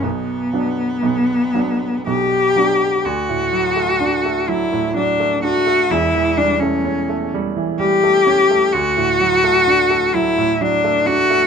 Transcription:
<<
  \new Staff \with { instrumentName = "Cello" } { \time 3/4 \key b \minor \tempo 4 = 64 b2 g'4 | \key d \major fis'4. e'8 d'8 fis'8 | e'8 d'16 cis'8. r8 g'4 | fis'4. e'8 d'8 fis'8 | }
  \new Staff \with { instrumentName = "Grand piano" } { \clef bass \time 3/4 \key b \minor <b,, b,>8 <fis b d'>8 <b,, b,>8 <fis b d'>8 <b,, b,>8 <fis b d'>8 | \key d \major d,16 a,16 fis16 a16 d'16 a16 fis16 a,16 fis16 a16 d'16 a16 | <e,, e,>16 e16 g16 a16 cis'16 a16 g16 e16 g16 a16 cis'16 a16 | d,16 a,16 fis16 a16 d'16 a16 fis16 a,16 fis16 a16 d'16 a16 | }
>>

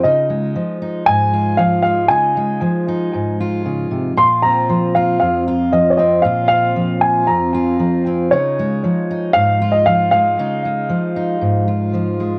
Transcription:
<<
  \new Staff \with { instrumentName = "Upright piano" } { \time 4/4 \key des \major \tempo 4 = 116 ees''2 aes''4 f''8 f''8 | aes''4. r2 r8 | c'''8 bes''4 f''8 f''4 ees''16. des''32 ees''8 | f''8 f''4 aes''8 bes''4. r8 |
des''2 f''8. ees''16 f''8 f''8~ | f''2. r4 | }
  \new Staff \with { instrumentName = "Steel-string acoustic guitar" } { \clef bass \time 4/4 \key des \major << { <ees' f'>8 aes4 ees'4 f'4 aes8 | ees'8 aes4 ees'4 f'4. | f'8 c'4 f'4 f'4 c'8 | f'8 c'4 f'4 f'4 c'8 |
ees'8 aes4 ees'4 f'4 aes8 | ees'8 aes4 ees'4 f'4 aes8 | } \\ { des4 f4 aes,4 f4 | des4 f4 aes,4 des8 c8 | bes,4 f4 f,4 f4 | bes,4 f4 f,4 f4 |
des4 f4 aes,4 f4 | des4 f4 aes,4 f4 | } >> }
>>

